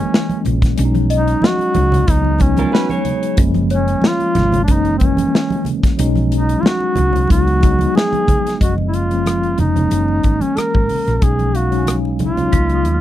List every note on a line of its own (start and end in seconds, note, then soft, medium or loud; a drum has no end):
0.00 0.79 E3 medium
0.00 0.77 G#3 medium
0.00 0.79 A#3 medium
0.00 0.42 C#4 medium
0.00 0.78 C#4 medium
0.14 snare loud
0.29 closed hi-hat soft
0.29 high conga medium
0.45 0.73 A#1 medium
0.45 closed hi-hat medium
0.45 low conga medium
0.62 kick loud
0.62 snare soft
0.62 closed hi-hat medium
0.76 1.33 B1 loud
0.76 1.56 F#3 medium
0.76 1.57 G#3 medium
0.76 1.57 C#4 medium
0.76 0.85 D4 medium
0.76 closed hi-hat loud
0.76 muted conga soft
0.85 1.61 D#4 loud
0.95 closed hi-hat soft
0.95 high conga medium
1.10 2.37 D#5 medium
1.10 closed hi-hat medium
1.15 1.48 D#4 medium
1.28 closed hi-hat medium
1.42 snare loud
1.42 muted conga soft
1.42 high conga medium
1.46 2.12 F#4 loud
1.59 closed hi-hat soft
1.59 muted conga soft
1.75 2.03 C#2 medium
1.75 closed hi-hat medium
1.75 high conga medium
1.75 low conga medium
1.92 closed hi-hat medium
1.92 low conga medium
2.07 2.63 C#2 loud
2.07 2.28 F#3 medium
2.07 2.28 G#3 medium
2.07 2.29 B3 medium
2.07 2.30 D#4 medium
2.07 2.44 D#4 loud
2.07 kick medium
2.07 closed hi-hat medium
2.24 muted conga soft
2.39 2.99 F#3 medium
2.39 2.99 G#3 medium
2.39 3.00 B3 medium
2.39 3.07 C#4 medium
2.39 3.00 D#4 medium
2.39 kick medium
2.39 closed hi-hat medium
2.39 high conga medium
2.57 2.73 F4 medium
2.57 2.73 A#4 medium
2.57 closed hi-hat soft
2.57 high conga medium
2.72 2.90 F#4 medium
2.72 2.90 B4 medium
2.72 3.67 B5 medium
2.72 snare loud
2.72 muted conga soft
2.90 3.36 G#4 medium
2.90 3.36 C#5 medium
2.90 closed hi-hat soft
2.90 muted conga soft
2.90 high conga medium
3.05 closed hi-hat medium
3.05 low conga medium
3.23 closed hi-hat medium
3.36 3.93 F#1 loud
3.36 4.17 F3 loud
3.36 4.17 G#3 medium
3.36 4.18 A#3 medium
3.36 4.18 C#4 loud
3.36 kick loud
3.36 closed hi-hat loud
3.54 closed hi-hat soft
3.54 high conga medium
3.70 4.08 C#4 medium
3.70 4.97 C#5 medium
3.70 closed hi-hat medium
3.88 closed hi-hat medium
4.02 snare loud
4.02 muted conga soft
4.02 high conga medium
4.07 4.63 F4 loud
4.20 closed hi-hat soft
4.20 muted conga soft
4.35 4.69 G#1 medium
4.35 snare soft
4.35 closed hi-hat medium
4.35 high conga medium
4.35 low conga medium
4.52 closed hi-hat medium
4.52 low conga medium
4.64 4.88 E3 medium
4.64 4.89 G#3 medium
4.64 4.74 D4 medium
4.64 closed hi-hat medium
4.64 muted conga soft
4.68 5.24 F#1 loud
4.68 4.89 A#3 medium
4.68 4.90 C#4 medium
4.68 kick medium
4.72 4.97 D#4 loud
4.85 closed hi-hat soft
4.85 muted conga soft
4.98 5.60 E3 medium
4.98 5.60 G#3 medium
4.98 5.61 A#3 medium
4.98 5.07 C4 medium
4.98 kick medium
4.98 closed hi-hat medium
4.98 high conga medium
5.03 5.61 C#4 medium
5.03 5.68 C#4 medium
5.17 closed hi-hat medium
5.17 high conga medium
5.35 snare loud
5.50 closed hi-hat soft
5.50 muted conga soft
5.50 high conga medium
5.65 closed hi-hat medium
5.65 low conga medium
5.83 kick medium
5.83 snare soft
5.83 closed hi-hat medium
5.97 6.54 B1 loud
5.97 6.77 F#3 medium
5.97 6.78 G#3 medium
5.97 6.79 C#4 medium
5.97 6.79 D#4 loud
5.97 closed hi-hat loud
5.97 muted conga soft
6.15 closed hi-hat soft
6.15 high conga medium
6.32 6.62 D#4 medium
6.32 closed hi-hat medium
6.49 closed hi-hat medium
6.60 6.68 F4 medium
6.60 high conga medium
6.66 7.31 F#4 loud
6.66 snare loud
6.80 muted conga soft
6.96 7.25 C#2 medium
6.96 closed hi-hat medium
6.96 high conga medium
6.96 low conga medium
7.13 closed hi-hat medium
7.13 low conga medium
7.27 7.86 C#2 loud
7.27 7.49 F#3 medium
7.27 7.50 G#3 medium
7.27 7.51 B3 medium
7.27 7.51 D#4 medium
7.27 7.92 F#4 medium
7.27 kick medium
7.27 closed hi-hat medium
7.27 muted conga soft
7.47 closed hi-hat soft
7.60 7.68 F3 medium
7.60 8.21 G#3 medium
7.60 8.22 B3 medium
7.60 8.22 D#4 medium
7.60 kick medium
7.60 closed hi-hat medium
7.60 high conga medium
7.67 8.24 F#3 medium
7.79 closed hi-hat medium
7.79 high conga medium
7.95 8.57 G#4 loud
7.95 snare loud
7.95 muted conga soft
8.13 closed hi-hat soft
8.13 muted conga soft
8.13 high conga medium
8.27 kick medium
8.27 closed hi-hat medium
8.27 low conga medium
8.47 snare soft
8.47 closed hi-hat medium
8.58 9.55 F#1 medium
8.58 8.89 F3 medium
8.58 8.90 G#3 medium
8.58 8.90 A#3 medium
8.58 8.91 C#4 medium
8.58 10.20 D#5 medium
8.58 kick loud
8.58 closed hi-hat medium
8.63 8.74 F#4 medium
8.78 high conga medium
8.88 8.96 E4 medium
8.94 9.59 F4 medium
8.94 closed hi-hat medium
9.10 9.49 F3 medium
9.10 9.50 G#3 medium
9.10 9.50 A#3 medium
9.10 9.51 C#4 medium
9.10 closed hi-hat medium
9.26 cross-stick loud
9.26 closed hi-hat medium
9.26 high conga medium
9.43 closed hi-hat soft
9.43 muted conga soft
9.58 9.87 F1 medium
9.58 10.43 D#4 medium
9.58 closed hi-hat medium
9.58 high conga medium
9.58 low conga medium
9.75 9.91 F3 medium
9.75 9.89 G#3 medium
9.75 9.90 A#3 medium
9.75 9.91 C#4 medium
9.75 closed hi-hat soft
9.75 low conga medium
9.89 10.19 F#1 loud
9.89 10.95 E3 medium
9.89 10.96 G#3 medium
9.89 10.96 A#3 medium
9.89 10.97 C#4 medium
9.89 closed hi-hat medium
9.89 muted conga soft
10.08 muted conga soft
10.23 10.39 G#1 medium
10.23 kick medium
10.23 closed hi-hat medium
10.23 high conga soft
10.41 10.59 C#4 medium
10.41 closed hi-hat soft
10.41 high conga medium
10.57 11.17 A#4 medium
10.57 muted fingered electric bass stroke soft
10.57 cross-stick loud
10.57 closed hi-hat medium
10.74 10.88 G#1 medium
10.74 kick medium
10.74 high conga medium
10.89 open hi-hat medium
10.89 low conga soft
11.08 11.20 A#1 medium
11.08 cross-stick soft
11.08 closed hi-hat soft
11.17 11.51 F#3 medium
11.17 11.24 A#4 medium
11.21 12.49 B1 medium
11.21 11.51 G#3 medium
11.21 11.52 C#4 medium
11.21 11.52 D#4 medium
11.21 11.57 G#4 medium
11.21 kick loud
11.21 closed hi-hat medium
11.39 closed hi-hat soft
11.39 high conga medium
11.55 11.94 F#4 medium
11.55 12.82 F5 medium
11.55 closed hi-hat medium
11.71 12.11 F#3 medium
11.71 12.11 G#3 medium
11.71 12.12 C#4 medium
11.71 12.12 D#4 medium
11.71 closed hi-hat soft
11.78 13.01 G#5 soft
11.87 cross-stick loud
11.87 closed hi-hat medium
11.87 high conga medium
12.05 muted conga soft
12.19 13.01 F4 medium
12.19 closed hi-hat medium
12.19 high conga medium
12.19 low conga medium
12.37 12.53 F#3 medium
12.37 12.51 G#3 medium
12.37 12.54 C#4 medium
12.37 12.53 D#4 medium
12.37 closed hi-hat soft
12.37 low conga medium
12.51 12.86 C#2 loud
12.51 12.59 F3 medium
12.51 13.01 G#3 medium
12.51 13.01 B3 medium
12.51 13.01 D#4 medium
12.51 13.01 B6 medium
12.51 kick medium
12.51 closed hi-hat medium
12.58 13.01 F#3 medium
12.69 closed hi-hat soft
12.75 13.01 D#6 soft
12.85 13.01 D#2 medium
12.85 closed hi-hat medium
12.85 high conga soft
12.94 13.01 F6 soft